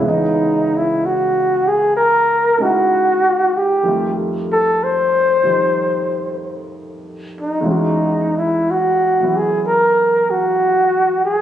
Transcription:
0, 0, Header, 1, 3, 480
1, 0, Start_track
1, 0, Tempo, 950872
1, 21, Time_signature, 4, 2, 24, 8
1, 5762, End_track
2, 0, Start_track
2, 0, Title_t, "Flugelhorn"
2, 0, Program_c, 0, 56
2, 0, Note_on_c, 0, 64, 62
2, 44, Note_on_c, 0, 63, 77
2, 51, Note_off_c, 0, 64, 0
2, 384, Note_on_c, 0, 64, 74
2, 392, Note_off_c, 0, 63, 0
2, 533, Note_on_c, 0, 66, 76
2, 540, Note_off_c, 0, 64, 0
2, 848, Note_on_c, 0, 68, 73
2, 855, Note_off_c, 0, 66, 0
2, 989, Note_off_c, 0, 68, 0
2, 992, Note_on_c, 0, 70, 82
2, 1323, Note_on_c, 0, 66, 82
2, 1331, Note_off_c, 0, 70, 0
2, 1802, Note_on_c, 0, 67, 86
2, 1810, Note_off_c, 0, 66, 0
2, 2091, Note_off_c, 0, 67, 0
2, 2284, Note_on_c, 0, 69, 91
2, 2441, Note_on_c, 0, 72, 89
2, 2449, Note_off_c, 0, 69, 0
2, 3394, Note_off_c, 0, 72, 0
2, 3740, Note_on_c, 0, 63, 57
2, 3869, Note_off_c, 0, 63, 0
2, 3895, Note_on_c, 0, 63, 70
2, 4230, Note_on_c, 0, 64, 70
2, 4237, Note_off_c, 0, 63, 0
2, 4394, Note_on_c, 0, 66, 70
2, 4402, Note_off_c, 0, 64, 0
2, 4727, Note_on_c, 0, 68, 65
2, 4735, Note_off_c, 0, 66, 0
2, 4852, Note_off_c, 0, 68, 0
2, 4882, Note_on_c, 0, 70, 82
2, 5200, Note_on_c, 0, 66, 83
2, 5208, Note_off_c, 0, 70, 0
2, 5657, Note_off_c, 0, 66, 0
2, 5679, Note_on_c, 0, 68, 83
2, 5762, Note_off_c, 0, 68, 0
2, 5762, End_track
3, 0, Start_track
3, 0, Title_t, "Grand piano"
3, 0, Program_c, 1, 0
3, 0, Control_c, 1, 64, 127
3, 0, Note_on_c, 1, 37, 51
3, 2, Note_on_c, 1, 49, 49
3, 13, Note_on_c, 1, 52, 46
3, 27, Control_c, 1, 64, 0
3, 28, Note_on_c, 1, 59, 46
3, 42, Note_on_c, 1, 75, 54
3, 109, Control_c, 1, 64, 127
3, 1304, Note_on_c, 1, 63, 38
3, 1311, Note_on_c, 1, 56, 34
3, 1312, Note_on_c, 1, 61, 31
3, 1318, Note_on_c, 1, 64, 43
3, 1926, Note_off_c, 1, 37, 0
3, 1934, Note_off_c, 1, 49, 0
3, 1934, Note_on_c, 1, 41, 42
3, 1938, Note_on_c, 1, 51, 46
3, 1940, Note_off_c, 1, 52, 0
3, 1940, Note_off_c, 1, 63, 0
3, 1942, Note_on_c, 1, 55, 44
3, 1944, Note_off_c, 1, 56, 0
3, 1944, Note_off_c, 1, 61, 0
3, 1947, Note_off_c, 1, 64, 0
3, 1948, Note_off_c, 1, 59, 0
3, 1951, Control_c, 1, 64, 0
3, 1951, Note_on_c, 1, 57, 46
3, 1954, Note_off_c, 1, 75, 0
3, 1958, Note_on_c, 1, 65, 47
3, 2034, Control_c, 1, 64, 127
3, 2735, Note_off_c, 1, 51, 0
3, 2743, Note_off_c, 1, 55, 0
3, 2743, Note_on_c, 1, 51, 35
3, 2748, Note_on_c, 1, 53, 32
3, 2750, Note_on_c, 1, 55, 31
3, 2758, Note_on_c, 1, 63, 43
3, 3839, Note_on_c, 1, 40, 50
3, 3853, Note_on_c, 1, 52, 47
3, 3860, Note_off_c, 1, 51, 0
3, 3861, Note_off_c, 1, 41, 0
3, 3863, Note_off_c, 1, 53, 0
3, 3864, Note_off_c, 1, 55, 0
3, 3864, Note_on_c, 1, 56, 47
3, 3868, Note_off_c, 1, 63, 0
3, 3869, Note_off_c, 1, 57, 0
3, 3873, Note_off_c, 1, 65, 0
3, 3873, Control_c, 1, 64, 0
3, 3875, Note_on_c, 1, 61, 48
3, 3892, Note_on_c, 1, 66, 54
3, 3946, Control_c, 1, 64, 127
3, 4638, Note_off_c, 1, 52, 0
3, 4646, Note_on_c, 1, 52, 35
3, 4655, Note_on_c, 1, 54, 29
3, 4659, Note_on_c, 1, 59, 31
3, 4661, Note_on_c, 1, 64, 40
3, 5762, Note_off_c, 1, 40, 0
3, 5762, Note_off_c, 1, 52, 0
3, 5762, Note_off_c, 1, 54, 0
3, 5762, Note_off_c, 1, 56, 0
3, 5762, Note_off_c, 1, 59, 0
3, 5762, Note_off_c, 1, 61, 0
3, 5762, Note_off_c, 1, 64, 0
3, 5762, Note_off_c, 1, 66, 0
3, 5762, End_track
0, 0, End_of_file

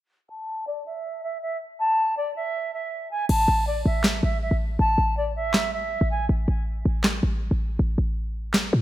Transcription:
0, 0, Header, 1, 4, 480
1, 0, Start_track
1, 0, Tempo, 375000
1, 375, Time_signature, 4, 2, 24, 8
1, 11286, End_track
2, 0, Start_track
2, 0, Title_t, "Flute"
2, 0, Program_c, 0, 73
2, 373, Note_on_c, 0, 81, 103
2, 825, Note_off_c, 0, 81, 0
2, 855, Note_on_c, 0, 74, 82
2, 1040, Note_off_c, 0, 74, 0
2, 1094, Note_on_c, 0, 76, 83
2, 1545, Note_off_c, 0, 76, 0
2, 1574, Note_on_c, 0, 76, 84
2, 1759, Note_off_c, 0, 76, 0
2, 1814, Note_on_c, 0, 76, 84
2, 2000, Note_off_c, 0, 76, 0
2, 2294, Note_on_c, 0, 81, 109
2, 2745, Note_off_c, 0, 81, 0
2, 2774, Note_on_c, 0, 74, 92
2, 2959, Note_off_c, 0, 74, 0
2, 3018, Note_on_c, 0, 76, 85
2, 3468, Note_off_c, 0, 76, 0
2, 3495, Note_on_c, 0, 76, 78
2, 3946, Note_off_c, 0, 76, 0
2, 3974, Note_on_c, 0, 80, 82
2, 4160, Note_off_c, 0, 80, 0
2, 4214, Note_on_c, 0, 81, 106
2, 4665, Note_off_c, 0, 81, 0
2, 4694, Note_on_c, 0, 74, 86
2, 4880, Note_off_c, 0, 74, 0
2, 4934, Note_on_c, 0, 76, 84
2, 5385, Note_off_c, 0, 76, 0
2, 5415, Note_on_c, 0, 76, 79
2, 5600, Note_off_c, 0, 76, 0
2, 5653, Note_on_c, 0, 76, 78
2, 5839, Note_off_c, 0, 76, 0
2, 6136, Note_on_c, 0, 81, 106
2, 6587, Note_off_c, 0, 81, 0
2, 6615, Note_on_c, 0, 74, 98
2, 6800, Note_off_c, 0, 74, 0
2, 6854, Note_on_c, 0, 76, 89
2, 7305, Note_off_c, 0, 76, 0
2, 7334, Note_on_c, 0, 76, 83
2, 7785, Note_off_c, 0, 76, 0
2, 7815, Note_on_c, 0, 80, 76
2, 8000, Note_off_c, 0, 80, 0
2, 11286, End_track
3, 0, Start_track
3, 0, Title_t, "808-style bass"
3, 0, Program_c, 1, 38
3, 4215, Note_on_c, 1, 33, 111
3, 4445, Note_off_c, 1, 33, 0
3, 4455, Note_on_c, 1, 33, 102
3, 4916, Note_off_c, 1, 33, 0
3, 4935, Note_on_c, 1, 33, 105
3, 5396, Note_off_c, 1, 33, 0
3, 5415, Note_on_c, 1, 33, 107
3, 5760, Note_off_c, 1, 33, 0
3, 5775, Note_on_c, 1, 33, 101
3, 6120, Note_off_c, 1, 33, 0
3, 6134, Note_on_c, 1, 33, 115
3, 6365, Note_off_c, 1, 33, 0
3, 6374, Note_on_c, 1, 33, 102
3, 7643, Note_off_c, 1, 33, 0
3, 7695, Note_on_c, 1, 33, 97
3, 8040, Note_off_c, 1, 33, 0
3, 8054, Note_on_c, 1, 33, 112
3, 8285, Note_off_c, 1, 33, 0
3, 8294, Note_on_c, 1, 33, 103
3, 8755, Note_off_c, 1, 33, 0
3, 8774, Note_on_c, 1, 33, 102
3, 9235, Note_off_c, 1, 33, 0
3, 9255, Note_on_c, 1, 33, 104
3, 9600, Note_off_c, 1, 33, 0
3, 9614, Note_on_c, 1, 33, 100
3, 9960, Note_off_c, 1, 33, 0
3, 9975, Note_on_c, 1, 33, 113
3, 10205, Note_off_c, 1, 33, 0
3, 10215, Note_on_c, 1, 33, 104
3, 11137, Note_off_c, 1, 33, 0
3, 11174, Note_on_c, 1, 45, 104
3, 11286, Note_off_c, 1, 45, 0
3, 11286, End_track
4, 0, Start_track
4, 0, Title_t, "Drums"
4, 4215, Note_on_c, 9, 49, 93
4, 4343, Note_off_c, 9, 49, 0
4, 5167, Note_on_c, 9, 39, 91
4, 5174, Note_on_c, 9, 38, 115
4, 5295, Note_off_c, 9, 39, 0
4, 5302, Note_off_c, 9, 38, 0
4, 7088, Note_on_c, 9, 39, 90
4, 7094, Note_on_c, 9, 38, 111
4, 7216, Note_off_c, 9, 39, 0
4, 7222, Note_off_c, 9, 38, 0
4, 9008, Note_on_c, 9, 39, 92
4, 9014, Note_on_c, 9, 38, 114
4, 9136, Note_off_c, 9, 39, 0
4, 9142, Note_off_c, 9, 38, 0
4, 10928, Note_on_c, 9, 39, 91
4, 10934, Note_on_c, 9, 38, 114
4, 11056, Note_off_c, 9, 39, 0
4, 11062, Note_off_c, 9, 38, 0
4, 11286, End_track
0, 0, End_of_file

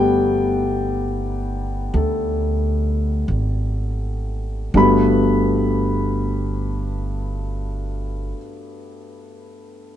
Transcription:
0, 0, Header, 1, 3, 480
1, 0, Start_track
1, 0, Key_signature, 1, "major"
1, 0, Tempo, 1132075
1, 318, Tempo, 1204819
1, 798, Tempo, 1324503
1, 1278, Tempo, 1463415
1, 1758, Time_signature, 4, 2, 24, 8
1, 1758, Tempo, 1518987
1, 3409, End_track
2, 0, Start_track
2, 0, Title_t, "Grand piano"
2, 0, Program_c, 0, 0
2, 0, Control_c, 0, 64, 127
2, 0, Note_on_c, 0, 55, 49
2, 0, Note_on_c, 0, 57, 43
2, 0, Note_on_c, 0, 59, 42
2, 0, Note_on_c, 0, 67, 50
2, 0, Note_on_c, 0, 74, 73
2, 0, Note_on_c, 0, 76, 73
2, 0, Note_on_c, 0, 79, 84
2, 786, Note_off_c, 0, 57, 0
2, 792, Note_on_c, 0, 57, 37
2, 804, Note_on_c, 0, 69, 41
2, 1268, Note_off_c, 0, 79, 0
2, 1756, Note_off_c, 0, 55, 0
2, 1756, Note_off_c, 0, 57, 0
2, 1759, Note_off_c, 0, 59, 0
2, 1760, Note_on_c, 0, 43, 52
2, 1761, Note_off_c, 0, 69, 0
2, 1762, Note_on_c, 0, 55, 44
2, 1762, Note_on_c, 0, 57, 47
2, 1763, Note_off_c, 0, 67, 0
2, 1763, Note_off_c, 0, 74, 0
2, 1763, Control_c, 0, 64, 0
2, 1764, Note_on_c, 0, 59, 49
2, 1765, Note_off_c, 0, 76, 0
2, 1768, Note_on_c, 0, 66, 56
2, 1768, Note_on_c, 0, 83, 73
2, 1822, Control_c, 0, 64, 127
2, 2899, Note_off_c, 0, 83, 0
2, 2903, Note_off_c, 0, 43, 0
2, 2906, Note_off_c, 0, 55, 0
2, 2906, Note_off_c, 0, 57, 0
2, 2908, Note_off_c, 0, 59, 0
2, 2912, Note_off_c, 0, 66, 0
2, 3409, End_track
3, 0, Start_track
3, 0, Title_t, "Upright bass"
3, 0, Program_c, 1, 32
3, 0, Note_on_c, 1, 31, 73
3, 779, Note_off_c, 1, 31, 0
3, 791, Note_on_c, 1, 38, 70
3, 1260, Note_off_c, 1, 38, 0
3, 1278, Note_on_c, 1, 32, 60
3, 1746, Note_off_c, 1, 32, 0
3, 1757, Note_on_c, 1, 31, 75
3, 2888, Note_off_c, 1, 31, 0
3, 3409, End_track
0, 0, End_of_file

